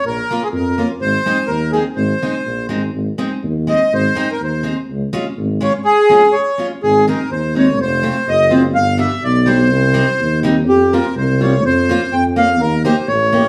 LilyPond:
<<
  \new Staff \with { instrumentName = "Accordion" } { \time 2/4 \key des \major \tempo 4 = 125 bes'8. aes'16 bes'8. r16 | c''4 bes'8 aes'8 | c''4. r8 | r4. ees''8 |
c''8. bes'16 c''8. r16 | r4. des''8 | aes'4 des''8. r16 | \key aes \major aes'8 bes'8 c''8 des''8 |
c''4 ees''8 c''8 | f''8 fes''8 d''8 c''8~ | c''4. r8 | g'8 bes'8 c''8 des''8 |
c''4 g''8 f''8 | bes'8 c''8 des''4 | }
  \new Staff \with { instrumentName = "Steel-string acoustic guitar" } { \time 2/4 \key des \major r8 <bes des' f'>8 r8 <bes des' f'>8 | r8 <aes c' ees'>8 r8 <aes c' ees'>8 | r8 <aes c' ees'>8 r8 <aes c' ees'>8 | r8 <aes c' ees'>8 r8 <aes c' ees'>8 |
r8 <aes c' ees'>8 r8 <aes c' ees'>8 | r8 <aes des' f'>8 r8 <aes des' f'>8 | r8 <aes des' f'>8 r8 <aes des' f'>8 | \key aes \major r8 <aes c' ees'>8 r8 <aes c' ees'>8 |
r8 <a c' f'>8 r8 <a c' f'>8 | r8 <g b d'>8 r8 <g b d'>8 | r8 <g c' ees'>8 r8 <g c' ees'>8 | r8 <g c' f'>8 r8 <g c' f'>8 |
r8 <bes des' f'>8 r8 <bes des' f'>8 | r8 <bes ees' g'>8 r8 <bes ees' g'>8 | }
  \new Staff \with { instrumentName = "Tuba" } { \clef bass \time 2/4 \key des \major bes,,8 r8 f,4 | aes,,8 r8 ees,4 | aes,,8 r8 bes,,8 aes,,8 | aes,,8 r8 ees,4 |
aes,,8 r8 ees,4 | des,8 r8 aes,,4 | r2 | \key aes \major aes,,4 ees,4 |
f,,4 ges,,4 | g,,4 b,,4 | c,4 ees,4 | f,4 c,4 |
f,4 f,4 | ees,4 a,,4 | }
>>